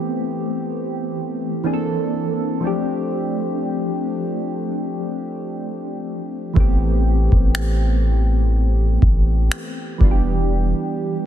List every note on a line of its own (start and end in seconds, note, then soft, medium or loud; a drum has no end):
0.00 1.59 E3 medium
0.00 1.60 A3 medium
0.00 1.61 B3 medium
0.00 1.62 C4 medium
0.00 1.63 G4 medium
1.64 2.63 E3 medium
1.64 2.63 A#3 medium
1.64 2.63 C4 medium
1.64 2.64 D4 medium
1.64 1.73 G#4 medium
1.73 2.67 A4 medium
2.60 6.51 F3 medium
2.60 6.52 A3 medium
2.60 6.53 C4 medium
2.65 6.54 D4 medium
2.65 6.54 G4 medium
6.54 7.29 A1 loud
6.54 9.95 E3 medium
6.54 9.96 A3 medium
6.54 9.97 B3 medium
6.54 kick loud
6.58 9.98 C4 medium
6.58 9.99 G4 medium
7.32 8.98 A1 loud
7.32 kick medium
7.55 finger snap loud
9.02 9.50 A1 loud
9.02 kick medium
9.52 finger snap loud
9.98 10.74 E1 loud
9.98 11.26 E3 medium
9.98 11.26 G3 medium
9.98 11.26 B3 medium
9.98 kick loud
10.03 11.26 D4 medium
10.03 10.10 F4 medium
10.11 11.26 G4 medium